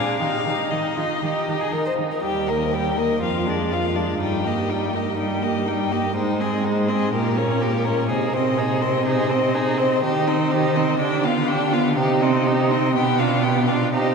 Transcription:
0.00 0.20 D4 soft
0.00 0.20 G#4 soft
0.00 0.19 F5 soft
0.20 0.28 D#3 soft
0.20 0.46 D#4 soft
0.20 0.45 G4 soft
0.20 0.73 F5 medium
0.46 0.54 D#3 soft
0.46 0.71 D#4 soft
0.46 0.71 G4 soft
0.71 0.79 D#3 soft
0.71 0.98 D#4 soft
0.71 0.97 D#4 soft
0.71 1.73 D#5 soft
0.97 1.05 D#3 soft
0.97 1.22 D#4 soft
0.97 1.21 F4 soft
1.21 1.31 D#3 soft
1.21 1.47 D#4 soft
1.21 1.63 G4 soft
1.49 1.57 D#3 soft
1.49 1.72 D#4 soft
1.61 1.74 G#4 soft
1.73 1.81 D#3 soft
1.73 1.98 D#4 soft
1.73 1.86 A#4 soft
1.86 1.94 C5 soft
1.99 2.07 D#3 soft
1.99 2.24 D#4 soft
2.12 2.23 A#4 soft
2.23 3.23 D#2 soft
2.23 2.51 G3 soft
2.23 2.50 G4 soft
2.23 2.51 G5 soft
2.48 2.75 A#3 soft
2.48 2.73 A#4 soft
2.48 2.75 D#5 soft
2.72 3.00 G3 soft
2.72 2.98 G4 soft
2.72 3.00 G5 soft
2.97 3.22 A#3 soft
2.97 3.21 A#4 soft
2.97 3.22 D#5 soft
3.21 4.19 F2 soft
3.21 3.48 F3 soft
3.21 3.48 F4 soft
3.21 3.51 F5 soft
3.46 3.73 G#3 soft
3.46 3.72 D4 soft
3.46 3.74 D5 soft
3.71 3.98 F3 soft
3.71 3.97 F4 soft
3.71 3.97 F5 soft
3.96 4.21 G#3 soft
3.96 4.20 D4 soft
3.96 4.20 D5 soft
4.20 6.11 G2 soft
4.20 4.47 G3 soft
4.20 4.46 D#4 soft
4.20 4.48 G5 soft
4.44 4.71 A#3 soft
4.44 4.71 G4 soft
4.44 4.72 D#5 soft
4.70 4.96 G3 soft
4.70 4.95 D#4 soft
4.70 4.97 G5 soft
4.94 5.18 A#3 soft
4.94 5.17 G4 soft
4.94 5.18 D#5 soft
5.17 5.44 G3 soft
5.17 5.44 D#4 soft
5.17 5.45 G5 soft
5.42 5.70 A#3 soft
5.42 5.67 G4 soft
5.42 5.69 D#5 soft
5.66 5.94 G3 soft
5.66 5.93 D#4 soft
5.66 5.94 G5 soft
5.92 6.15 A#3 soft
5.92 6.15 G4 soft
5.92 6.16 D#5 soft
6.16 7.11 G#2 soft
6.16 6.42 G#3 soft
6.16 6.42 D#4 soft
6.16 6.42 C5 soft
6.40 6.66 C4 soft
6.40 6.66 G#4 soft
6.40 6.66 D#5 soft
6.64 6.90 G#3 soft
6.64 6.90 D#4 soft
6.64 6.90 C5 soft
6.88 7.13 C4 soft
6.88 7.13 G#4 soft
6.88 7.13 D#5 soft
7.13 8.12 A#2 medium
7.13 7.38 A#3 soft
7.13 7.39 G4 soft
7.13 7.39 A#4 soft
7.36 7.63 C#4 soft
7.36 7.63 A#4 soft
7.36 7.65 C#5 soft
7.61 7.87 A#3 soft
7.61 7.86 G4 soft
7.61 7.87 A#4 soft
7.85 8.09 C#4 soft
7.85 8.09 A#4 soft
7.85 8.10 C#5 soft
8.09 10.03 C3 soft
8.09 8.35 D#4 soft
8.09 8.35 G#4 soft
8.09 8.38 C5 soft
8.34 8.59 C4 soft
8.34 8.59 C5 soft
8.34 8.61 D#5 soft
8.58 8.83 D#4 soft
8.58 8.84 G#4 soft
8.58 8.84 C5 soft
8.81 9.05 C4 soft
8.81 9.05 C5 soft
8.81 9.05 D#5 soft
9.05 9.31 D#4 soft
9.05 9.32 G#4 soft
9.05 9.33 C5 soft
9.30 9.56 C4 soft
9.30 9.57 C5 soft
9.30 9.56 D#5 soft
9.55 9.80 D#4 soft
9.55 9.80 G#4 soft
9.55 9.81 C5 soft
9.78 10.03 C4 soft
9.78 10.03 C5 soft
9.78 10.03 D#5 soft
10.03 10.99 D#3 medium
10.03 10.29 D#4 soft
10.03 10.30 G4 soft
10.03 10.28 C5 soft
10.27 10.54 C4 soft
10.27 10.53 D#4 soft
10.27 10.53 D#5 soft
10.51 10.78 D#4 soft
10.51 10.78 G4 soft
10.51 10.76 C5 soft
10.75 11.00 C4 soft
10.75 10.99 D#4 soft
10.75 10.99 D#5 soft
10.99 12.00 D3 medium
10.99 11.26 D4 soft
10.99 11.26 G4 soft
10.99 11.25 G5 soft
11.24 11.51 B3 soft
11.24 11.50 F4 soft
11.24 11.49 F5 soft
11.48 11.75 D4 soft
11.48 11.74 G4 soft
11.48 11.75 G5 soft
11.72 11.97 B3 soft
11.72 11.96 F4 soft
11.72 11.96 F5 soft
11.96 12.97 C3 medium
11.96 12.24 D#4 soft
11.96 12.23 G4 soft
11.96 12.23 C5 soft
12.21 12.48 C4 soft
12.21 12.48 D#4 soft
12.21 12.47 D#5 soft
12.46 12.73 D#4 soft
12.46 12.73 G4 soft
12.46 12.73 C5 soft
12.71 12.95 C4 soft
12.71 12.95 D#4 soft
12.71 12.95 D#5 soft
12.95 13.92 B2 medium
12.95 13.21 B3 soft
12.95 13.21 G4 soft
12.95 13.20 G5 soft
13.19 13.46 D4 soft
13.19 13.46 F4 soft
13.19 13.45 F5 soft
13.44 13.70 B3 soft
13.44 13.71 G4 soft
13.44 13.68 G5 soft
13.67 13.93 D4 soft
13.67 13.92 F4 soft
13.67 13.91 F5 soft
13.92 14.15 C3 medium
13.92 14.15 D#4 soft
13.92 14.15 G4 soft
13.92 14.15 C5 soft

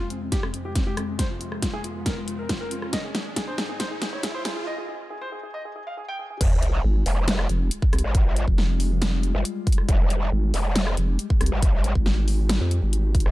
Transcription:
0.00 2.89 F2 medium
0.00 2.89 C3 medium
0.00 2.89 G#3 medium
0.00 riser medium
0.10 0.17 C4 medium
0.10 closed hi-hat medium
0.22 0.28 C4 medium
0.32 0.39 G4 medium
0.32 kick medium
0.32 snare soft
0.32 closed hi-hat medium
0.43 0.49 C4 medium
0.43 cross-stick medium
0.54 0.60 C4 medium
0.54 closed hi-hat soft
0.65 0.71 G4 medium
0.75 0.82 C4 medium
0.75 kick medium
0.75 snare soft
0.75 closed hi-hat medium
0.87 0.93 G4 medium
0.97 1.04 C4 medium
0.97 cross-stick medium
0.97 closed hi-hat medium
1.08 1.15 C4 medium
1.19 1.26 C5 medium
1.19 kick medium
1.19 snare medium
1.19 closed hi-hat medium
1.30 1.36 F4 medium
1.41 1.47 F4 medium
1.41 closed hi-hat medium
1.52 cross-stick medium
1.62 1.69 F4 medium
1.62 kick medium
1.62 snare medium
1.62 closed hi-hat medium
1.74 1.80 G#4 medium
1.84 1.91 F4 medium
1.84 closed hi-hat medium
1.95 2.02 F4 medium
2.06 2.13 A#4 medium
2.06 kick medium
2.06 snare medium
2.06 closed hi-hat medium
2.17 2.23 F4 medium
2.28 2.34 F4 medium
2.28 closed hi-hat soft
2.39 2.45 A#4 medium
2.49 2.56 F4 medium
2.49 kick loud
2.49 snare medium
2.49 closed hi-hat medium
2.61 2.67 A#4 medium
2.71 2.78 F4 medium
2.71 closed hi-hat medium
2.82 2.89 F4 medium
2.82 cross-stick medium
2.93 4.65 G#2 medium
2.93 4.65 D#3 medium
2.93 4.65 C4 medium
2.93 3.00 D#5 loud
2.93 kick loud
2.93 snare medium
2.93 closed hi-hat medium
3.04 3.10 G#4 medium
3.15 3.21 G#4 medium
3.15 snare medium
3.15 closed hi-hat medium
3.36 3.43 G#4 medium
3.36 kick medium
3.36 snare medium
3.36 closed hi-hat medium
3.48 3.54 C5 medium
3.58 3.65 G#4 medium
3.58 snare medium
3.58 closed hi-hat medium
3.69 3.76 G#4 medium
3.80 3.87 C5 medium
3.80 kick loud
3.80 snare medium
3.80 closed hi-hat medium
3.91 3.97 G#4 medium
4.02 4.08 G#4 medium
4.02 snare medium
4.02 closed hi-hat medium
4.13 4.19 C#5 medium
4.23 4.30 G#4 medium
4.23 kick loud
4.23 snare medium
4.23 closed hi-hat medium
4.35 4.41 C5 loud
4.45 4.52 G#4 medium
4.45 snare medium
4.45 closed hi-hat medium
4.56 4.63 G#4 medium
4.67 4.73 D#5 loud
4.78 4.84 G#4 medium
4.89 4.95 G#4 medium
5.10 5.17 G#4 medium
5.22 5.28 C5 medium
5.32 5.39 G#4 medium
5.43 5.50 G#4 medium
5.54 5.61 D#5 medium
5.65 5.71 G#4 medium
5.76 5.82 G#4 medium
5.87 5.93 F5 medium
5.97 6.04 G#4 medium
6.08 6.15 G5 loud
6.19 6.26 G#4 medium
6.30 6.36 G#4 medium
6.41 6.83 F1 loud
6.41 13.31 G3 medium
6.41 13.31 G#3 medium
6.41 9.85 F4 medium
6.41 kick loud
6.41 closed hi-hat medium
6.41 crash loud
6.41 sub drop medium
6.63 closed hi-hat medium
6.84 7.04 G#1 loud
7.06 7.48 F1 medium
7.06 open hi-hat medium
7.28 snare loud
7.28 closed hi-hat medium
7.39 cross-stick medium
7.49 7.70 F1 loud
7.49 closed hi-hat medium
7.71 closed hi-hat medium
7.82 kick loud
7.93 8.02 C2 medium
7.93 cross-stick medium
7.93 closed hi-hat medium
7.99 closed hi-hat medium
8.04 8.46 G#1 medium
8.15 kick loud
8.15 closed hi-hat medium
8.36 closed hi-hat medium
8.48 9.33 F1 loud
8.48 kick medium
8.58 snare medium
8.80 open hi-hat medium
9.02 snare loud
9.02 closed hi-hat medium
9.23 closed hi-hat medium
9.35 9.43 G1 loud
9.45 closed hi-hat medium
9.67 kick loud
9.67 closed hi-hat medium
9.72 closed hi-hat medium
9.78 cross-stick medium
9.89 10.30 F1 loud
9.89 13.31 G4 medium
9.89 kick loud
9.89 closed hi-hat medium
10.10 closed hi-hat medium
10.32 10.52 G#1 loud
10.54 10.96 F1 medium
10.54 open hi-hat medium
10.76 snare loud
10.76 closed hi-hat medium
10.87 cross-stick medium
10.97 11.17 F1 loud
10.97 closed hi-hat medium
11.19 closed hi-hat medium
11.30 kick loud
11.41 11.50 C2 loud
11.41 cross-stick medium
11.41 closed hi-hat medium
11.46 closed hi-hat medium
11.52 11.94 G#1 loud
11.62 kick loud
11.62 closed hi-hat medium
11.84 closed hi-hat medium
11.95 12.59 G#1 loud
11.95 kick medium
12.06 snare medium
12.28 open hi-hat medium
12.49 snare loud
12.49 closed hi-hat medium
12.61 12.81 F2 loud
12.71 closed hi-hat medium
12.82 13.24 G#1 loud
12.93 closed hi-hat medium
13.15 kick loud
13.15 closed hi-hat soft
13.20 closed hi-hat medium
13.26 13.31 F1 medium
13.26 cross-stick medium

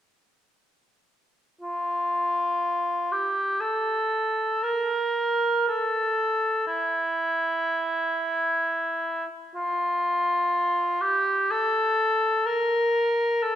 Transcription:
1.61 3.13 F4 medium
3.12 3.62 G4 medium
3.60 4.65 A4 medium
4.63 5.66 A#4 medium
5.68 6.65 A4 medium
6.67 9.25 E4 medium
9.55 11.02 F4 medium
11.01 11.52 G4 medium
11.51 12.48 A4 medium
12.46 13.44 A#4 medium
13.43 13.55 A4 medium

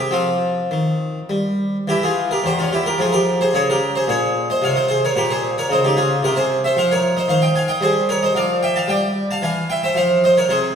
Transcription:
0.00 0.13 G4 medium
0.11 0.59 F3 soft
0.11 1.83 C4 soft
0.11 1.30 F4 medium
0.71 1.18 D#3 medium
1.29 1.76 G3 soft
1.88 2.32 E3 medium
1.88 2.02 E4 medium
1.88 2.02 G4 medium
2.03 2.29 F4 medium
2.03 2.30 G#4 medium
2.31 2.44 G4 medium
2.31 2.44 A#4 medium
2.44 2.87 E2 medium
2.44 2.58 G4 medium
2.44 2.58 C5 medium
2.59 2.71 C#4 medium
2.59 2.71 F4 medium
2.73 2.85 E4 medium
2.73 2.85 G4 medium
2.86 2.99 G4 medium
2.86 2.99 A#4 medium
2.98 3.42 F3 medium
2.98 3.12 F4 medium
2.98 3.13 G#4 medium
3.13 3.38 G4 medium
3.13 3.35 A#4 medium
3.41 3.53 G#4 medium
3.41 3.54 C5 medium
3.53 3.96 C#3 medium
3.53 3.67 G#4 medium
3.53 3.67 C#5 loud
3.70 3.94 G4 medium
3.70 3.91 A#4 medium
3.95 4.08 G#4 medium
3.95 4.08 C5 medium
4.08 4.50 A#2 medium
4.08 4.46 G#4 medium
4.08 4.48 C#5 medium
4.50 4.62 C5 medium
4.50 4.62 D#5 medium
4.62 5.05 C3 medium
4.62 4.75 C#5 medium
4.62 4.76 F5 loud
4.76 4.87 C5 medium
4.76 4.89 D#5 medium
4.88 5.02 G#4 medium
4.88 5.02 C5 medium
5.05 5.16 A#4 medium
5.05 5.17 C#5 medium
5.16 5.59 A#2 medium
5.16 5.29 G4 medium
5.16 5.30 A#4 medium
5.30 5.55 G#4 medium
5.30 5.53 C5 medium
5.58 5.70 A#4 medium
5.58 5.70 C#5 medium
5.70 6.12 C#3 medium
5.70 5.84 C5 medium
5.70 5.84 D#5 loud
5.84 5.97 D#4 medium
5.84 5.97 G4 medium
5.97 6.22 F4 medium
5.97 6.19 G#4 medium
6.23 6.65 C3 medium
6.23 6.37 G4 medium
6.23 6.37 A#4 medium
6.36 6.62 G#4 medium
6.36 6.59 C5 medium
6.64 6.77 C5 medium
6.64 6.77 E5 medium
6.76 7.19 F3 medium
6.76 6.90 C5 medium
6.76 6.91 F5 loud
6.91 7.16 A#4 medium
6.91 7.17 C#5 medium
7.17 7.29 C5 medium
7.17 7.30 D#5 medium
7.28 7.71 D#3 medium
7.28 7.42 C5 medium
7.28 7.43 F5 loud
7.42 7.55 D#5 medium
7.42 7.56 G5 medium
7.56 7.69 F5 medium
7.56 7.69 G#5 loud
7.68 7.82 D#5 medium
7.68 7.82 G5 medium
7.81 8.24 G3 medium
7.81 8.08 G#4 medium
7.81 8.05 C5 medium
8.09 8.22 A#4 medium
8.09 8.22 C#5 medium
8.23 8.36 C5 medium
8.23 8.36 D#5 medium
8.35 8.77 F3 medium
8.35 8.61 D5 medium
8.35 8.62 F5 loud
8.63 8.75 E5 medium
8.63 8.76 G5 loud
8.76 8.89 F5 medium
8.76 8.89 A5 loud
8.88 9.31 G3 medium
8.88 9.27 D5 medium
8.88 9.23 G5 loud
9.31 9.42 F5 medium
9.31 9.43 A5 loud
9.42 9.84 E3 medium
9.42 9.68 F5 medium
9.42 9.65 G#5 loud
9.70 9.82 E5 medium
9.70 9.82 G5 loud
9.83 9.95 C5 medium
9.83 9.96 E5 medium
9.95 10.38 F3 medium
9.95 10.21 C5 medium
9.95 10.22 F5 loud
10.24 10.36 C5 medium
10.24 10.36 D#5 medium
10.38 10.49 A#4 medium
10.38 10.50 C#5 medium
10.49 10.75 C3 medium
10.49 10.75 G#4 medium
10.49 10.72 C5 loud

